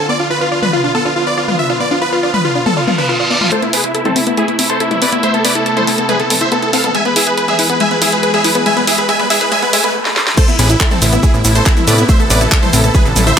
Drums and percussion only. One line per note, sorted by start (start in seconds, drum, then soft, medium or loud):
0.63 mid tom medium
1.48 mid tom medium
2.34 mid tom medium
2.66 mid tom medium
2.88 mid tom medium
3.41 mid tom medium
3.52 closed hi-hat medium
3.62 closed hi-hat soft
3.73 open hi-hat loud
3.84 closed hi-hat medium
3.95 closed hi-hat medium
4.05 closed hi-hat soft
4.05 mid tom medium
4.16 open hi-hat loud
4.27 closed hi-hat medium
4.37 closed hi-hat medium
4.48 closed hi-hat soft
4.59 open hi-hat loud
4.70 closed hi-hat medium
4.80 closed hi-hat medium
4.91 closed hi-hat soft
4.91 mid tom medium
5.02 open hi-hat loud
5.12 closed hi-hat medium
5.23 closed hi-hat medium
5.34 closed hi-hat soft
5.45 open hi-hat loud
5.55 closed hi-hat soft
5.66 closed hi-hat medium
5.77 closed hi-hat soft
5.77 mid tom medium
5.87 open hi-hat loud
5.98 closed hi-hat medium
6.09 closed hi-hat medium
6.09 mid tom medium
6.20 closed hi-hat soft
6.30 open hi-hat loud
6.30 mid tom medium
6.41 closed hi-hat medium
6.52 closed hi-hat medium
6.62 closed hi-hat soft
6.73 open hi-hat loud
6.84 closed hi-hat medium
6.84 mid tom medium
6.95 closed hi-hat medium
7.05 closed hi-hat soft
7.16 open hi-hat loud
7.27 closed hi-hat soft
7.38 closed hi-hat medium
7.48 closed hi-hat soft
7.48 mid tom medium
7.59 open hi-hat loud
7.70 closed hi-hat medium
7.80 closed hi-hat soft
7.91 closed hi-hat soft
8.02 open hi-hat loud
8.12 closed hi-hat medium
8.23 closed hi-hat medium
8.34 closed hi-hat soft
8.34 mid tom medium
8.44 open hi-hat loud
8.55 closed hi-hat medium
8.66 closed hi-hat medium
8.77 closed hi-hat soft
8.87 open hi-hat loud
8.98 closed hi-hat soft
9.09 closed hi-hat medium
9.20 closed hi-hat soft
9.20 mid tom medium
9.30 open hi-hat loud
9.41 closed hi-hat medium
9.52 closed hi-hat soft
9.52 mid tom medium
9.62 closed hi-hat soft
9.73 open hi-hat loud
9.73 mid tom medium
9.84 closed hi-hat medium
10.05 snare medium
10.16 snare medium
10.27 snare medium
10.37 kick loud
10.37 closed hi-hat medium
10.37 crash loud
10.37 shaker soft
10.48 closed hi-hat soft
10.48 shaker soft
10.59 open hi-hat loud
10.59 shaker medium
10.70 closed hi-hat medium
10.70 shaker soft
10.80 kick loud
10.80 clap loud
10.80 closed hi-hat medium
10.80 shaker soft
10.91 closed hi-hat soft
10.91 mid tom medium
10.91 shaker soft
11.02 open hi-hat loud
11.02 shaker medium
11.13 closed hi-hat medium
11.13 shaker soft
11.23 kick loud
11.23 closed hi-hat medium
11.23 shaker soft
11.34 closed hi-hat soft
11.34 shaker soft
11.45 open hi-hat loud
11.45 shaker medium
11.55 closed hi-hat medium
11.55 shaker soft
11.66 kick loud
11.66 clap loud
11.66 closed hi-hat medium
11.66 shaker soft
11.77 closed hi-hat soft
11.77 mid tom medium
11.77 shaker soft
11.88 open hi-hat loud
11.88 shaker medium
11.98 closed hi-hat medium
11.98 shaker soft
12.09 kick loud
12.09 closed hi-hat medium
12.09 shaker soft
12.20 closed hi-hat soft
12.20 shaker soft
12.30 open hi-hat loud
12.30 shaker medium
12.41 closed hi-hat medium
12.41 shaker soft
12.52 kick loud
12.52 clap loud
12.52 closed hi-hat medium
12.52 shaker soft
12.63 closed hi-hat soft
12.63 mid tom medium
12.63 shaker soft
12.73 open hi-hat loud
12.73 shaker medium
12.84 closed hi-hat medium
12.84 shaker soft
12.95 kick loud
12.95 closed hi-hat medium
12.95 mid tom medium
12.95 shaker soft
13.05 closed hi-hat soft
13.05 shaker soft
13.16 open hi-hat loud
13.16 mid tom medium
13.16 shaker medium
13.27 closed hi-hat medium
13.27 shaker soft